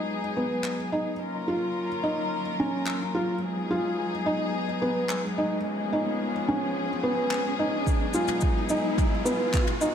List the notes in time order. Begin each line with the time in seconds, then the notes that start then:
Already playing: F#3 G#3 B3 D#4 G#4, riser
0.37 B3
0.64 clap
0.92 D#4
1.20 F#3 A#3 C#4 F4 A#4
1.48 F4
2.03 D#4
2.60 C#4
2.86 clap
3.15 F4
3.43 G#3 B3 D#4 G#4
3.71 F4
4.26 D#4
4.82 B3
5.09 clap
5.38 D#4
5.63 F3 C#4 G#4
5.93 D#4
6.49 C#4
7.03 B3
7.31 clap
7.59 D#4
7.85 F#3 G#3 B3 D#4, kick, shaker
8.14 F4, shaker
8.28 mid tom, shaker
8.41 kick, shaker
8.69 D#4, shaker
8.98 kick, mid tom, shaker
9.25 B3, shaker
9.54 kick, clap, shaker
9.67 mid tom
9.81 D#4, shaker